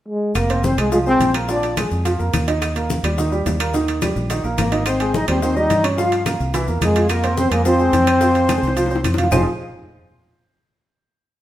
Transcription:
0.09 trombone G#3
0.35 fingered electric bass F1, trombone A#3, accordion A#4, high bongo, high conga, high timbale, claves, maracas
0.49 grand piano C4 C5, high bongo, high conga, high timbale, maracas
0.64 trombone C4, accordion C5, high bongo, high conga, maracas
0.77 fingered electric bass C2, grand piano G#3 G#4, trombone G#3, accordion G#4, high bongo, high timbale, claves, maracas
0.92 grand piano F3 F4, trombone G#3, accordion G#4, high bongo, high conga, maracas
1.06 grand piano G#3 G#4, trombone C4, accordion C5, high bongo, high conga, maracas
1.20 fingered electric bass A#1, high bongo, low bongo, high conga, high timbale, maracas
1.34 grand piano A#3 A#4, high timbale, claves, maracas
1.48 grand piano F3 F4, trombone D4, accordion D5, high bongo, high conga, maracas
1.63 high bongo, high conga, high timbale, maracas
1.77 grand piano G#3 G#4, high bongo, high conga, high timbale, claves, maracas
1.91 fingered electric bass F2, high bongo, maracas
2.05 grand piano F3 F4, high bongo, high conga, high timbale, maracas
2.19 fingered electric bass F2, grand piano A#3 A#4, high bongo, high conga, maracas
2.33 fingered electric bass D#2, high bongo, low bongo, high conga, high timbale, claves, maracas
2.48 grand piano D#4 D#5, high timbale, maracas
2.62 high bongo, high conga, high timbale, claves, maracas
2.76 grand piano A#3 A#4, high bongo, high conga, high timbale, maracas
2.90 high bongo, high conga, maracas
3.03 fingered electric bass D#2, grand piano G3 G4, high bongo, high timbale, claves, maracas
3.18 grand piano D#3 D#4, high bongo, high conga, maracas
3.32 grand piano G3 G4, high bongo, high conga, maracas
3.46 fingered electric bass D#2, high bongo, low bongo, high conga, high timbale, low timbale, maracas
3.60 grand piano A#3 A#4, high timbale, claves, maracas
3.74 grand piano D#3 D#4, high bongo, high conga, maracas
3.88 high bongo, high conga, high timbale, maracas
4.02 grand piano G3 G4, high bongo, high conga, high timbale, claves, maracas
4.16 fingered electric bass A#1, high bongo, maracas
4.30 grand piano D#3 D#4, high bongo, high conga, high timbale, maracas
4.44 fingered electric bass A#1, grand piano A#3 A#4, high bongo, high conga, maracas
4.58 fingered electric bass G#1, trombone A#3, accordion A#4, high bongo, low bongo, high conga, high timbale, claves, maracas
4.72 grand piano D#4 D#5, high timbale, maracas
4.86 trombone C4, accordion C5, high bongo, high conga, high timbale, claves, maracas
5.00 grand piano G#3 G#4, high bongo, high conga, high timbale, maracas
5.13 trombone D#4, accordion D#5, high bongo, high conga, maracas
5.28 fingered electric bass D#2, grand piano G3 G4, trombone C4, accordion C5, high bongo, high timbale, claves, maracas
5.41 grand piano D#3 D#4, trombone C4, accordion C5, high bongo, high conga, maracas
5.55 grand piano G3 G4, trombone D#4, accordion D#5, high bongo, high conga, maracas
5.70 fingered electric bass G2, high bongo, low bongo, high conga, high timbale, maracas
5.84 grand piano C#4 C#5, high timbale, claves, maracas
5.97 grand piano F3 F4, trombone F4, accordion F5, high bongo, high conga, maracas
6.12 high bongo, high conga, high timbale, maracas
6.26 grand piano A#3 A#4, high bongo, high conga, high timbale, claves, maracas
6.40 fingered electric bass C2, high bongo, maracas
6.54 grand piano E3 E4, high bongo, high conga, high timbale, maracas
6.67 fingered electric bass E2, grand piano A#3 A#4, high bongo, high conga, maracas
6.81 fingered electric bass F2, trombone G#3, accordion G#4, high bongo, low bongo, high conga, high timbale, claves, maracas
6.95 grand piano F4 F5, high timbale, maracas
7.09 trombone A#3, accordion A#4, high bongo, high conga, high timbale, claves, maracas
7.23 grand piano C4 C5, high bongo, high conga, high timbale, maracas
7.37 trombone C4, accordion C5, high bongo, high conga, maracas
7.51 fingered electric bass F2, grand piano G#3 G#4, trombone A#3, accordion A#4, high bongo, high timbale, claves, maracas
7.65 grand piano F3 F4, trombone C4, accordion C5, high bongo, high conga, maracas
7.79 grand piano G#3 G#4, high bongo, high conga, maracas
7.93 fingered electric bass F2, high bongo, low bongo, high conga, high timbale, maracas
8.07 grand piano C4 C5, high timbale, claves, maracas
8.21 grand piano F3 F4, high bongo, high conga, maracas
8.35 high conga, high timbale, maracas
8.49 grand piano G#3 G#4, low bongo, high conga, high timbale, claves, maracas
8.58 high bongo
8.62 fingered electric bass C2, maracas
8.67 low bongo
8.76 grand piano F3 F4, high conga, high timbale, maracas
8.86 low bongo
8.90 grand piano C4 C5, high conga, maracas
8.95 low bongo
9.04 fingered electric bass F2, low bongo, high conga, high timbale, claves, maracas
9.14 grand piano F4, low bongo, maracas
9.18 grand piano F5, high conga, high timbale
9.23 low bongo
9.31 fingered electric bass F1, grand piano F3 C4 D#4 F4 G#4 C5, trombone F4, accordion F5, low bongo, low conga, low timbale, claves, maracas

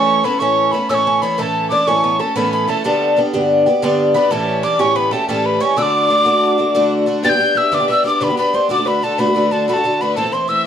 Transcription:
Already playing: twelve-string acoustic guitar A2 E3 A3 C#4 A4, bouzouki C#4, fiddle C#5, tin whistle C#6
0.23 twelve-string acoustic guitar E3 A3 C#4 A4, bouzouki B3, fiddle B4, tin whistle B5
0.39 twelve-string acoustic guitar A2 E3 A3 C#4 A4, bouzouki C#4, fiddle C#5, tin whistle C#6
0.72 twelve-string acoustic guitar A3 C#4 A4, bouzouki B3, tin whistle B5
0.89 twelve-string acoustic guitar A2 E3 A3 C#4 A4, bouzouki C#4, fiddle C#5, tin whistle E6
0.94 tin whistle C#6
1.07 bouzouki C#4
1.22 twelve-string acoustic guitar E3 A3 C#4 A4, bouzouki B3, tin whistle B5
1.38 twelve-string acoustic guitar A2 E3 A3 C#4 A4, bouzouki A3, fiddle A4, tin whistle B5
1.42 tin whistle A5
1.70 twelve-string acoustic guitar E3 A3 C#4 A4, bouzouki D4, fiddle D5, tin whistle D6
1.87 twelve-string acoustic guitar A2 E3 A3 C#4 A4, bouzouki C#4, fiddle C#5, tin whistle C#6
2.04 bouzouki B3
2.19 bouzouki A3, twelve-string acoustic guitar A3 C#4 A4, fiddle A4, tin whistle A5
2.36 twelve-string acoustic guitar A2 E3 A3 C#4 A4, bouzouki B3, fiddle B4, tin whistle B5
2.53 bouzouki B3, tin whistle B5
2.68 twelve-string acoustic guitar E3 A3 C#4 A4, bouzouki A3, fiddle A4, tin whistle A5
2.84 twelve-string acoustic guitar G2 D3 G3 B3 D4 G4, bouzouki A3, fiddle A4, tin whistle A5
3.16 twelve-string acoustic guitar G3 B3 D4 G4
3.34 twelve-string acoustic guitar G2 D3 G3 B3 D4 G4
3.66 twelve-string acoustic guitar G3 B3 D4 G4
3.82 twelve-string acoustic guitar G2 D3 G3 B3 D4 G4
4.14 twelve-string acoustic guitar G3 B3 D4 G4, bouzouki B3, fiddle B4, tin whistle B5
4.31 twelve-string acoustic guitar A2 E3 G3 C#4 G4, bouzouki A3, fiddle A4, tin whistle A5
4.47 fiddle C#5
4.63 twelve-string acoustic guitar E3 G3 C#4 G4, bouzouki D4, fiddle D5, tin whistle D6
4.79 twelve-string acoustic guitar A2 E3 G3 C#4 G4, bouzouki C#4, fiddle C#5, tin whistle C#6
4.96 bouzouki B3, fiddle B4, tin whistle B5
5.11 twelve-string acoustic guitar G3 C#4 G4, bouzouki A3, fiddle A4, tin whistle A5
5.28 twelve-string acoustic guitar A2 E3 G3 C#4 G4, bouzouki A3, fiddle A4, tin whistle A5
5.45 fiddle B4, tin whistle B5
5.60 twelve-string acoustic guitar E3 G3 C#4 G4, bouzouki C#4, fiddle C#5, tin whistle C#6
5.76 twelve-string acoustic guitar D3 A3 D4 F#4, bouzouki D4, fiddle D5, tin whistle E6
5.82 tin whistle D6
6.09 twelve-string acoustic guitar D3 A3 D4 F#4
6.25 twelve-string acoustic guitar D3 A3 D4 F#4
6.58 twelve-string acoustic guitar A3 D4 F#4
6.75 twelve-string acoustic guitar D3 A3 D4 F#4
7.06 twelve-string acoustic guitar D3 A3 D4 F#4
7.23 twelve-string acoustic guitar G2 D3 G3 B3 D4 G4, fiddle G5, tin whistle A6
7.29 twelve-string acoustic guitar B3 D4 G4, tin whistle G6
7.34 twelve-string acoustic guitar G3
7.39 twelve-string acoustic guitar G3 B3 D4 G4
7.55 twelve-string acoustic guitar G3 B3 D4 G4, fiddle E5, tin whistle E6
7.71 twelve-string acoustic guitar G2 D3 G3 B3 D4 G4, fiddle D5, tin whistle D6
7.80 twelve-string acoustic guitar G3 B3 D4 G4
7.88 twelve-string acoustic guitar G3 B3 D4 G4, fiddle E5, tin whistle E6
8.04 twelve-string acoustic guitar G3 B3 D4 G4, fiddle D5, tin whistle D6
8.20 twelve-string acoustic guitar G2 D3 G3 B3 D4 G4, fiddle B4, tin whistle B5
8.29 twelve-string acoustic guitar G3 B3 D4 G4
8.36 twelve-string acoustic guitar G3 B3 D4 G4, fiddle B4, tin whistle B5
8.53 twelve-string acoustic guitar G3 B3 D4 G4, fiddle C5, tin whistle C6
8.69 twelve-string acoustic guitar D3 A3 D4 F#4, fiddle D5, tin whistle D6
8.77 twelve-string acoustic guitar A3 D4 F#4
8.85 twelve-string acoustic guitar D3 A3 D4 F#4, fiddle B4, tin whistle B5
9.02 twelve-string acoustic guitar D3 A3 D4 F#4, fiddle A4, tin whistle A5
9.18 twelve-string acoustic guitar D3 A3 D4 F#4, fiddle B4, tin whistle B5
9.27 twelve-string acoustic guitar A3 D4 F#4
9.34 twelve-string acoustic guitar D3 A3 D4 F#4, fiddle B4
9.51 twelve-string acoustic guitar D3 A3 D4 F#4, fiddle A4, tin whistle A5
9.67 twelve-string acoustic guitar D3 A3 D4 F#4, fiddle A4, tin whistle B5
9.73 twelve-string acoustic guitar D4 F#4, tin whistle A5
9.78 twelve-string acoustic guitar A3
9.84 twelve-string acoustic guitar D3 A3 D4 F#4
9.99 twelve-string acoustic guitar D3 A3 D4 F#4, fiddle B4, tin whistle B5
10.16 twelve-string acoustic guitar A2 E3 A3 C4 E4, fiddle A4, tin whistle A5
10.24 twelve-string acoustic guitar A3 C4 E4
10.32 twelve-string acoustic guitar E3 A3 C4 E4, fiddle C5, tin whistle C6
10.48 twelve-string acoustic guitar E3 A3 C4 E4, fiddle E5, tin whistle E6

